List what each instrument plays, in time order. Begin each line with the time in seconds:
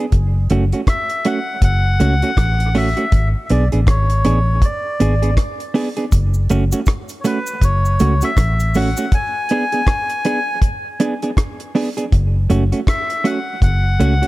0.12 fingered electric bass F#1, kick, closed hi-hat
0.50 fingered electric bass F#1, clean electric guitar A3 C#4 F#4, closed hi-hat
0.72 clean electric guitar A3 C#4 F#4, closed hi-hat
0.87 melodica E5, kick, cross-stick, closed hi-hat
1.10 closed hi-hat
1.25 clean electric guitar A3 C#4 F#4, melodica F#5, closed hi-hat
1.62 fingered electric bass F#1, melodica F#5, kick, closed hi-hat
2.00 fingered electric bass C#2, clean electric guitar A3 C#4 F#4, closed hi-hat
2.22 clean electric guitar A3 C#4 F#4, closed hi-hat
2.37 fingered electric bass A1, kick, cross-stick, closed hi-hat
2.60 closed hi-hat
2.75 clean electric guitar A3 C#4 F#4, melodica E5, open hi-hat
2.97 clean electric guitar A3 C#4 F#4, closed hi-hat
3.12 fingered electric bass G#1, melodica E5, kick, closed hi-hat
3.46 melodica E5, closed hi-hat
3.50 fingered electric bass B1, clean electric guitar B3 D4 G#4, melodica D5
3.72 fingered electric bass A1, clean electric guitar B3 D4 G#4, closed hi-hat
3.87 fingered electric bass G#1, melodica C#5, kick, cross-stick, closed hi-hat
4.10 closed hi-hat
4.25 fingered electric bass A1, clean electric guitar B3 D4 G#4, closed hi-hat
4.62 melodica D5, kick, closed hi-hat
5.00 fingered electric bass G#1, clean electric guitar B3 D4 G#4, closed hi-hat
5.22 clean electric guitar B3 D4 G#4, closed hi-hat
5.37 kick, cross-stick, closed hi-hat
5.60 closed hi-hat
5.74 clean electric guitar B3 D4 G#4, open hi-hat
5.97 clean electric guitar B3 D4 G#4, closed hi-hat
6.12 fingered electric bass F#1, kick, closed hi-hat, cabasa
6.34 cabasa
6.49 fingered electric bass F#1, clean electric guitar A3 C#4 F#4, closed hi-hat, cabasa
6.72 clean electric guitar A3 C#4 F#4, closed hi-hat, cabasa
6.86 kick, cross-stick, closed hi-hat, cabasa
7.09 closed hi-hat, cabasa
7.21 clean electric guitar A3, melodica C#5, cabasa
7.25 clean electric guitar C#4 F#4, melodica B4, closed hi-hat
7.47 cabasa
7.61 fingered electric bass F#1, melodica C#5, kick, closed hi-hat, cabasa
7.85 cabasa
8.00 fingered electric bass C#2, clean electric guitar A3 C#4 F#4, closed hi-hat, cabasa
8.21 clean electric guitar A3 C#4 F#4, melodica E5, closed hi-hat, cabasa
8.37 fingered electric bass A1, kick, cross-stick, closed hi-hat, cabasa
8.60 closed hi-hat, cabasa
8.74 clean electric guitar A3 C#4 F#4, melodica F#5, open hi-hat, cabasa
8.97 clean electric guitar A3 C#4 F#4, closed hi-hat, cabasa
9.12 melodica G#5, kick, closed hi-hat
9.49 clean electric guitar B3 D4 G#4, closed hi-hat
9.72 clean electric guitar B3 D4 G#4, closed hi-hat
9.87 kick, cross-stick, closed hi-hat
10.10 closed hi-hat
10.25 clean electric guitar B3 D4 G#4, closed hi-hat
10.62 kick, closed hi-hat
11.00 clean electric guitar B3 D4 G#4, closed hi-hat
11.22 clean electric guitar B3 D4 G#4, closed hi-hat
11.37 kick, cross-stick, closed hi-hat
11.60 closed hi-hat
11.75 clean electric guitar B3 D4 G#4, open hi-hat
11.97 clean electric guitar B3 D4 G#4, closed hi-hat
12.12 fingered electric bass F#1, kick, closed hi-hat
12.50 fingered electric bass F#1, clean electric guitar A3 C#4 F#4, closed hi-hat
12.72 clean electric guitar A3 C#4 F#4, closed hi-hat
12.87 melodica E5, kick, cross-stick, closed hi-hat
13.10 closed hi-hat
13.24 clean electric guitar A3 C#4 F#4, melodica F#5, closed hi-hat
13.62 fingered electric bass F#1, melodica F#5, kick, closed hi-hat
14.00 fingered electric bass C#2, clean electric guitar A3 C#4 F#4, closed hi-hat
14.22 clean electric guitar A3 C#4 F#4, closed hi-hat